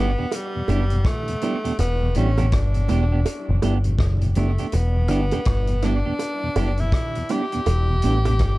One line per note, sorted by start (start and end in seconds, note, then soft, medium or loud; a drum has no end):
0.00 0.15 G1 medium
0.00 0.10 B3 medium
0.00 0.36 B3 loud
0.00 0.10 D4 medium
0.00 0.11 G4 medium
0.18 0.26 E2 medium
0.18 0.26 B2 soft
0.18 0.26 B3 soft
0.18 0.25 D4 medium
0.18 0.25 G4 medium
0.32 1.08 G3 loud
0.32 closed hi-hat loud
0.32 high bongo medium
0.56 0.63 E2 medium
0.56 0.63 B2 medium
0.68 1.03 F#1 medium
0.68 0.81 G3 medium
0.68 0.83 B3 medium
0.68 0.83 D4 medium
0.68 0.81 D4 medium
0.68 0.82 E4 medium
0.68 0.84 G4 loud
0.68 closed hi-hat medium
0.68 high bongo medium
0.90 1.00 E2 medium
0.90 0.99 B2 medium
0.90 closed hi-hat soft
1.05 1.79 A3 loud
1.05 kick loud
1.05 cross-stick loud
1.05 closed hi-hat medium
1.28 1.36 E2 medium
1.28 1.36 B2 medium
1.28 closed hi-hat medium
1.41 1.55 G3 medium
1.41 1.56 B3 medium
1.41 1.57 D4 medium
1.41 1.55 D4 medium
1.41 1.55 E4 medium
1.41 1.57 G4 medium
1.41 closed hi-hat medium
1.41 low bongo medium
1.64 1.72 E2 medium
1.64 1.72 B2 medium
1.64 1.72 B3 medium
1.64 1.72 D4 medium
1.64 1.71 G4 medium
1.64 closed hi-hat medium
1.79 2.13 E1 loud
1.79 2.19 B3 loud
1.79 closed hi-hat loud
1.79 high bongo medium
2.02 2.09 E2 medium
2.02 2.09 B2 medium
2.15 2.50 A1 medium
2.15 2.27 G3 medium
2.15 2.30 B3 medium
2.15 2.53 C#4 medium
2.15 2.28 D4 medium
2.15 2.30 D4 medium
2.15 2.28 E4 medium
2.15 2.31 G4 medium
2.15 closed hi-hat medium
2.38 2.46 E2 medium
2.38 2.46 B2 medium
2.38 2.46 B3 medium
2.38 2.46 D4 medium
2.38 2.45 G4 medium
2.38 closed hi-hat medium
2.38 high bongo medium
2.52 2.87 G1 medium
2.52 3.96 D4 medium
2.52 kick loud
2.52 cross-stick loud
2.52 closed hi-hat loud
2.74 2.83 E2 medium
2.74 2.83 B2 medium
2.74 closed hi-hat soft
2.88 3.24 E1 medium
2.88 3.01 G3 medium
2.88 3.03 B3 medium
2.88 3.01 D4 medium
2.88 3.04 D4 medium
2.88 3.01 E4 medium
2.88 3.04 G4 medium
2.88 closed hi-hat medium
2.88 low bongo medium
3.12 3.19 E2 medium
3.12 3.19 B2 medium
3.12 3.20 B3 soft
3.12 3.19 D4 medium
3.12 3.19 G4 medium
3.25 closed hi-hat medium
3.25 high bongo medium
3.49 3.62 F#1 medium
3.49 3.56 E2 medium
3.49 3.56 B2 medium
3.62 3.97 G1 medium
3.62 3.74 G3 medium
3.62 3.77 B3 medium
3.62 3.74 D4 medium
3.62 3.77 D4 medium
3.62 3.75 E4 medium
3.62 3.77 G4 medium
3.62 closed hi-hat medium
3.62 high bongo medium
3.84 3.93 E2 medium
3.84 3.93 B2 medium
3.84 closed hi-hat soft
3.99 4.33 F#1 medium
3.99 kick loud
3.99 cross-stick loud
3.99 closed hi-hat loud
4.21 4.30 E2 medium
4.21 4.29 B2 medium
4.21 closed hi-hat medium
4.35 4.57 F#1 loud
4.35 4.48 G3 medium
4.35 4.75 A3 medium
4.35 4.50 B3 medium
4.35 4.48 D4 medium
4.35 4.51 D4 medium
4.35 4.48 E4 medium
4.35 4.51 G4 medium
4.35 closed hi-hat medium
4.35 low bongo medium
4.58 4.66 E2 medium
4.58 4.66 B2 medium
4.58 4.66 B3 medium
4.58 4.66 D4 medium
4.58 4.66 G4 medium
4.58 closed hi-hat medium
4.72 5.07 E1 loud
4.72 5.86 B3 loud
4.72 closed hi-hat medium
4.72 high bongo medium
4.96 5.03 E2 medium
4.96 5.03 B2 medium
5.08 5.30 G1 medium
5.08 5.21 G3 medium
5.08 5.23 B3 medium
5.08 5.21 D4 medium
5.08 5.24 D4 medium
5.08 5.21 E4 medium
5.08 5.24 G4 medium
5.08 closed hi-hat medium
5.31 5.40 E2 medium
5.31 5.40 B2 medium
5.31 5.40 B3 medium
5.31 5.39 D4 medium
5.31 5.39 G4 medium
5.31 closed hi-hat medium
5.31 high bongo medium
5.45 6.02 G1 medium
5.45 kick loud
5.45 cross-stick loud
5.45 closed hi-hat loud
5.67 5.76 E2 medium
5.67 5.76 B2 medium
5.67 closed hi-hat medium
5.82 5.95 G3 medium
5.82 5.97 B3 medium
5.82 6.81 D4 loud
5.82 5.95 D4 medium
5.82 5.98 D4 medium
5.82 5.95 E4 medium
5.82 5.98 G4 medium
5.82 cross-stick medium
5.82 closed hi-hat medium
5.82 low bongo medium
6.05 6.13 E2 medium
6.05 6.13 B2 medium
6.05 6.13 B3 soft
6.05 6.13 D4 medium
6.05 6.12 G4 soft
6.19 closed hi-hat loud
6.19 high bongo medium
6.43 6.50 E2 medium
6.43 6.50 B2 medium
6.55 6.90 F#1 loud
6.55 6.69 G3 medium
6.55 6.70 B3 medium
6.55 6.71 D4 medium
6.55 6.69 D4 medium
6.55 6.69 E4 medium
6.55 6.71 G4 medium
6.55 closed hi-hat medium
6.55 high bongo medium
6.77 6.87 E2 medium
6.77 6.87 B2 medium
6.77 7.32 E4 loud
6.77 closed hi-hat soft
6.92 kick loud
6.92 cross-stick loud
6.92 closed hi-hat medium
7.15 7.24 E2 medium
7.15 7.24 B2 medium
7.15 closed hi-hat medium
7.29 7.42 G3 medium
7.29 7.43 B3 medium
7.29 7.44 D4 medium
7.29 7.42 D4 medium
7.29 7.42 E4 medium
7.29 7.44 G4 medium
7.29 8.58 G4 loud
7.29 closed hi-hat medium
7.29 low bongo medium
7.52 7.61 E2 medium
7.52 7.61 B2 medium
7.52 7.60 B3 soft
7.52 7.60 D4 medium
7.52 7.59 G4 medium
7.52 closed hi-hat soft
7.66 8.01 E1 medium
7.66 closed hi-hat medium
7.66 high bongo medium
7.90 7.97 E2 medium
7.90 7.97 B2 medium
8.02 8.38 A1 medium
8.02 8.15 G3 medium
8.02 8.17 B3 medium
8.02 8.15 D4 medium
8.02 8.18 D4 medium
8.02 8.15 E4 medium
8.02 8.18 G4 medium
8.02 closed hi-hat medium
8.25 8.33 E2 medium
8.25 8.33 B2 medium
8.25 8.33 B3 medium
8.25 8.33 D4 medium
8.25 8.32 G4 medium
8.25 closed hi-hat soft
8.25 high bongo medium
8.39 8.58 G1 medium
8.39 kick loud
8.39 cross-stick loud
8.39 closed hi-hat loud